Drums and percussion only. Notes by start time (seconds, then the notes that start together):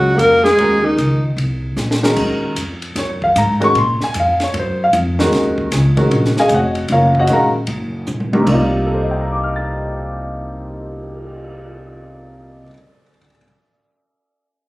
0.19 hi-hat pedal, ride
0.45 snare
0.58 ride
0.98 hi-hat pedal, ride
1.38 ride
1.77 snare, hi-hat pedal
1.91 snare
2.03 snare
2.16 kick, crash
2.56 hi-hat pedal, ride
2.82 ride
2.96 snare, ride
3.22 kick
3.36 hi-hat pedal, ride
3.62 ride
3.75 ride
4.01 snare
4.14 hi-hat pedal, ride
4.40 snare, ride
4.54 ride
4.93 hi-hat pedal, ride
5.19 snare
5.33 snare, ride
5.58 kick
5.72 snare, hi-hat pedal, ride
5.97 kick, ride
6.11 ride
6.25 snare
6.37 snare
6.49 hi-hat pedal, ride
6.75 ride
6.88 ride
7.15 kick
7.27 hi-hat pedal, ride
7.67 ride
8.07 hi-hat pedal, mid tom
8.20 mid tom
8.33 mid tom
8.47 kick, crash
8.72 cymbal swell